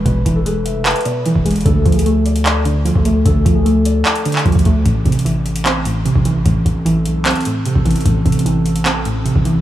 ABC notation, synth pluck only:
X:1
M:4/4
L:1/8
Q:1/4=150
K:Am
V:1 name="Synth pluck" clef=bass
[B,,E,^G,B] E, G,2 B B,, E, G, | D, F, A,2 d D, F, A, | D, F, A,2 d D, F, A, | A,, C, E,2 C A,, C, E, |
A,,2 E,2 C A,, C, E, | A,, C, E,2 C A,, C, E, |]